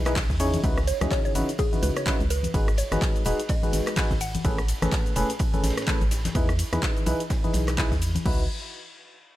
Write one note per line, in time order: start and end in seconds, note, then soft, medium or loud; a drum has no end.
0.00 0.31 B1 loud
0.06 0.18 E3 medium
0.06 0.18 D#4 medium
0.06 0.18 E4 medium
0.06 0.18 G#4 medium
0.06 0.18 B4 loud
0.06 cross-stick medium
0.06 clap soft
0.06 closed hi-hat medium
0.06 tambourine soft
0.06 shaker soft
0.16 kick loud
0.16 snare loud
0.16 clap loud
0.16 closed hi-hat medium
0.16 open hi-hat medium
0.16 ride medium
0.16 tambourine medium
0.16 high conga medium
0.16 shaker soft
0.29 0.57 E2 loud
0.29 kick medium
0.29 snare medium
0.29 closed hi-hat soft
0.29 tambourine soft
0.29 shaker soft
0.39 0.61 C#3 medium
0.39 0.61 D#4 medium
0.39 0.61 E4 medium
0.39 0.61 G#4 medium
0.39 0.61 C#5 loud
0.39 open hi-hat loud
0.39 ride medium
0.39 tambourine loud
0.39 shaker medium
0.54 closed hi-hat medium
0.54 tambourine soft
0.54 high conga medium
0.54 shaker soft
0.64 0.93 C#2 loud
0.64 0.79 C#3 medium
0.64 0.79 D#4 medium
0.64 0.79 E4 medium
0.64 0.79 F#4 medium
0.64 0.79 B4 loud
0.64 kick loud
0.64 closed hi-hat soft
0.64 ride loud
0.64 ride medium
0.64 tambourine medium
0.64 shaker soft
0.77 cross-stick medium
0.77 closed hi-hat soft
0.77 tambourine soft
0.77 shaker soft
0.87 1.06 C#5 medium
0.87 open hi-hat loud
0.87 ride medium
0.87 tambourine medium
0.87 shaker medium
1.01 1.07 C#2 medium
1.01 1.33 C#3 medium
1.01 1.33 D#4 medium
1.01 1.33 E4 medium
1.01 1.33 F#4 medium
1.01 1.33 G#4 medium
1.01 cross-stick medium
1.01 snare soft
1.01 closed hi-hat medium
1.01 tambourine soft
1.01 high conga medium
1.01 shaker soft
1.11 1.20 C#5 medium
1.11 kick loud
1.11 snare loud
1.11 clap loud
1.11 closed hi-hat soft
1.11 ride loud
1.11 ride medium
1.11 tambourine medium
1.11 shaker soft
1.25 1.31 C#5 medium
1.25 closed hi-hat soft
1.25 tambourine soft
1.25 shaker soft
1.35 1.43 G#1 medium
1.35 1.50 C#3 medium
1.35 1.50 D#4 medium
1.35 1.50 E4 medium
1.35 1.50 F#4 medium
1.35 1.50 B4 medium
1.35 open hi-hat medium
1.35 ride medium
1.35 tambourine loud
1.35 high conga medium
1.35 shaker medium
1.49 closed hi-hat medium
1.49 tambourine soft
1.49 shaker soft
1.58 1.96 G#4 medium
1.58 kick loud
1.58 closed hi-hat medium
1.58 ride medium
1.58 tambourine soft
1.58 shaker soft
1.73 2.04 C#3 medium
1.73 2.04 D#4 medium
1.73 2.04 E4 medium
1.73 2.04 F#4 medium
1.73 2.04 B4 medium
1.73 closed hi-hat soft
1.73 tambourine soft
1.73 high conga loud
1.73 shaker soft
1.82 1.91 C#2 medium
1.82 1.94 B4 medium
1.82 open hi-hat loud
1.82 ride medium
1.82 tambourine medium
1.82 shaker medium
1.96 2.13 C#5 medium
1.96 cross-stick medium
1.96 closed hi-hat soft
1.96 tambourine soft
1.96 shaker soft
2.06 2.22 C#3 loud
2.06 2.22 D#4 medium
2.06 2.22 E4 medium
2.06 2.22 F#4 medium
2.06 2.22 B4 loud
2.06 kick loud
2.06 snare loud
2.06 clap loud
2.06 closed hi-hat medium
2.06 ride medium
2.06 tambourine soft
2.06 high conga medium
2.06 shaker soft
2.20 2.48 C#2 medium
2.20 closed hi-hat soft
2.20 ride soft
2.20 tambourine soft
2.20 shaker soft
2.30 2.49 B4 medium
2.30 open hi-hat loud
2.30 ride medium
2.30 tambourine loud
2.30 shaker medium
2.43 closed hi-hat medium
2.43 tambourine soft
2.43 high conga medium
2.43 shaker soft
2.54 2.83 G#1 loud
2.54 2.69 G#3 medium
2.54 2.69 D#4 medium
2.54 2.69 F#4 medium
2.54 2.69 G#4 medium
2.54 2.69 B4 loud
2.54 kick loud
2.54 closed hi-hat medium
2.54 ride medium
2.54 ride loud
2.54 tambourine medium
2.54 shaker soft
2.67 cross-stick medium
2.67 closed hi-hat soft
2.67 tambourine soft
2.67 shaker soft
2.77 2.97 C#5 medium
2.77 open hi-hat loud
2.77 ride medium
2.77 tambourine medium
2.77 shaker medium
2.91 2.98 G#1 medium
2.91 3.23 G#3 medium
2.91 3.23 D#4 medium
2.91 3.23 F#4 medium
2.91 3.23 G#4 medium
2.91 3.23 B4 medium
2.91 cross-stick medium
2.91 snare soft
2.91 closed hi-hat medium
2.91 tambourine soft
2.91 high conga medium
2.91 shaker soft
3.02 kick loud
3.02 snare loud
3.02 clap loud
3.02 closed hi-hat medium
3.02 ride medium
3.02 tambourine medium
3.02 shaker soft
3.15 closed hi-hat soft
3.15 tambourine soft
3.15 shaker soft
3.25 3.34 D#1 medium
3.25 3.41 G#3 medium
3.25 3.41 D#4 medium
3.25 3.41 F#4 medium
3.25 3.41 G#4 medium
3.25 3.41 B4 loud
3.25 open hi-hat loud
3.25 ride medium
3.25 tambourine loud
3.25 shaker medium
3.40 closed hi-hat medium
3.40 tambourine soft
3.40 shaker soft
3.49 3.87 D#5 medium
3.49 kick loud
3.49 closed hi-hat medium
3.49 ride medium
3.49 tambourine medium
3.49 shaker soft
3.63 3.95 G#3 medium
3.63 3.95 D#4 medium
3.63 3.95 F#4 medium
3.63 3.95 G#4 medium
3.63 3.95 B4 medium
3.63 closed hi-hat soft
3.63 tambourine soft
3.63 high conga medium
3.63 shaker soft
3.73 3.82 G#1 medium
3.73 snare medium
3.73 open hi-hat loud
3.73 ride medium
3.73 tambourine medium
3.73 shaker medium
3.87 cross-stick medium
3.87 clap soft
3.87 closed hi-hat medium
3.87 tambourine soft
3.87 shaker soft
3.96 4.12 G#3 medium
3.96 4.12 D#4 medium
3.96 4.12 F#4 medium
3.96 4.12 G#4 medium
3.96 4.12 B4 loud
3.96 kick loud
3.96 snare loud
3.96 clap loud
3.96 closed hi-hat medium
3.96 open hi-hat medium
3.96 ride medium
3.96 tambourine soft
3.96 high conga medium
3.96 shaker soft
4.10 4.38 G#1 medium
4.10 kick medium
4.10 snare soft
4.10 closed hi-hat soft
4.10 tambourine soft
4.10 shaker soft
4.20 4.50 F#5 medium
4.20 open hi-hat loud
4.20 ride medium
4.20 tambourine loud
4.20 shaker medium
4.34 closed hi-hat medium
4.34 tambourine soft
4.34 high conga medium
4.34 shaker soft
4.45 4.73 A1 loud
4.45 4.60 A2 medium
4.45 4.60 C#4 medium
4.45 4.60 G#4 medium
4.45 4.60 A4 medium
4.45 4.60 B4 loud
4.45 kick loud
4.45 closed hi-hat medium
4.45 ride medium
4.45 tambourine soft
4.45 shaker soft
4.58 cross-stick medium
4.58 closed hi-hat soft
4.58 tambourine soft
4.58 shaker soft
4.68 open hi-hat loud
4.68 ride medium
4.68 tambourine medium
4.68 shaker medium
4.82 4.88 A1 medium
4.82 5.14 A2 medium
4.82 5.14 C#4 medium
4.82 5.14 G#4 medium
4.82 5.14 A4 medium
4.82 5.14 B4 medium
4.82 cross-stick medium
4.82 snare soft
4.82 closed hi-hat medium
4.82 tambourine soft
4.82 high conga loud
4.82 shaker soft
4.92 kick loud
4.92 snare loud
4.92 clap loud
4.92 closed hi-hat medium
4.92 ride loud
4.92 ride medium
4.92 tambourine soft
4.92 shaker soft
5.06 closed hi-hat soft
5.06 shaker soft
5.15 5.24 E1 loud
5.15 5.31 A2 medium
5.15 5.31 C#4 medium
5.15 5.31 G#4 medium
5.15 5.31 A4 medium
5.15 5.31 B4 loud
5.15 open hi-hat medium
5.15 ride medium
5.15 tambourine loud
5.15 shaker medium
5.30 closed hi-hat medium
5.30 tambourine soft
5.30 shaker soft
5.39 kick loud
5.39 closed hi-hat medium
5.39 ride medium
5.39 tambourine medium
5.39 shaker soft
5.54 5.85 A2 medium
5.54 5.85 C#4 medium
5.54 5.85 G#4 medium
5.54 5.85 A4 medium
5.54 5.85 B4 medium
5.54 closed hi-hat soft
5.54 tambourine soft
5.54 high conga medium
5.54 shaker soft
5.63 5.72 A1 medium
5.63 snare medium
5.63 open hi-hat loud
5.63 ride medium
5.63 tambourine medium
5.63 shaker medium
5.70 snare medium
5.70 ride medium
5.77 cross-stick medium
5.77 snare medium
5.77 closed hi-hat medium
5.77 ride medium
5.77 tambourine soft
5.77 shaker soft
5.82 snare medium
5.82 ride medium
5.87 6.03 A2 medium
5.87 6.03 C#4 medium
5.87 6.03 G#4 medium
5.87 6.03 A4 medium
5.87 6.03 B4 loud
5.87 kick loud
5.87 snare loud
5.87 clap loud
5.87 closed hi-hat medium
5.87 ride medium
5.87 tambourine medium
5.87 high conga medium
5.87 shaker medium
6.01 6.29 A1 medium
6.01 closed hi-hat soft
6.01 ride soft
6.01 tambourine soft
6.01 shaker soft
6.11 snare loud
6.11 open hi-hat medium
6.11 ride medium
6.11 tambourine medium
6.11 shaker medium
6.25 snare loud
6.25 closed hi-hat medium
6.25 ride medium
6.25 tambourine soft
6.25 high conga medium
6.25 shaker soft
6.35 6.64 E2 loud
6.35 6.50 E3 medium
6.35 6.50 D#4 medium
6.35 6.50 E4 medium
6.35 6.50 G#4 medium
6.35 6.50 B4 loud
6.35 kick loud
6.35 closed hi-hat medium
6.35 ride loud
6.35 ride medium
6.35 tambourine soft
6.35 shaker soft
6.49 cross-stick medium
6.49 closed hi-hat soft
6.49 tambourine soft
6.49 shaker soft
6.59 open hi-hat loud
6.59 ride medium
6.59 tambourine medium
6.59 shaker medium
6.73 6.79 E2 medium
6.73 7.04 E3 medium
6.73 7.04 D#4 medium
6.73 7.04 E4 medium
6.73 7.04 G#4 medium
6.73 7.04 B4 medium
6.73 cross-stick medium
6.73 snare soft
6.73 closed hi-hat medium
6.73 tambourine soft
6.73 high conga medium
6.73 shaker soft
6.83 kick loud
6.83 snare loud
6.83 clap loud
6.83 closed hi-hat medium
6.83 ride medium
6.83 tambourine medium
6.83 shaker soft
6.97 closed hi-hat soft
6.97 tambourine soft
6.97 shaker soft
7.06 7.15 B1 medium
7.06 7.22 E3 medium
7.06 7.22 D#4 medium
7.06 7.22 E4 medium
7.06 7.22 G#4 medium
7.06 7.22 B4 loud
7.06 open hi-hat medium
7.06 ride medium
7.06 tambourine medium
7.06 high conga medium
7.06 shaker medium
7.20 closed hi-hat medium
7.20 tambourine soft
7.20 shaker soft
7.30 kick loud
7.30 snare loud
7.30 closed hi-hat medium
7.30 ride medium
7.30 tambourine medium
7.30 shaker soft
7.44 7.76 E3 medium
7.44 7.76 D#4 medium
7.44 7.76 E4 medium
7.44 7.76 G#4 medium
7.44 7.76 B4 medium
7.44 closed hi-hat soft
7.44 tambourine soft
7.44 high conga medium
7.44 shaker soft
7.53 7.93 B1 medium
7.53 snare medium
7.53 open hi-hat loud
7.53 ride medium
7.53 tambourine medium
7.53 shaker medium
7.68 cross-stick medium
7.68 clap soft
7.68 closed hi-hat medium
7.68 tambourine soft
7.68 shaker soft
7.78 7.93 E3 medium
7.78 7.93 D#4 medium
7.78 7.93 E4 medium
7.78 7.93 G#4 medium
7.78 7.93 B4 loud
7.78 kick loud
7.78 snare loud
7.78 clap loud
7.78 closed hi-hat medium
7.78 open hi-hat medium
7.78 ride medium
7.78 tambourine medium
7.78 high conga medium
7.78 shaker soft
7.92 8.19 E2 loud
7.92 kick medium
7.92 snare soft
7.92 closed hi-hat soft
7.92 tambourine soft
7.92 shaker soft
8.01 open hi-hat loud
8.01 ride medium
8.01 tambourine medium
8.01 shaker medium
8.15 closed hi-hat medium
8.15 tambourine soft
8.15 high conga loud
8.15 shaker soft
8.26 8.48 C#2 loud
8.26 8.44 D#4 medium
8.26 8.44 E4 medium
8.26 8.44 F#4 medium
8.26 8.44 B4 loud
8.26 kick loud
8.26 crash medium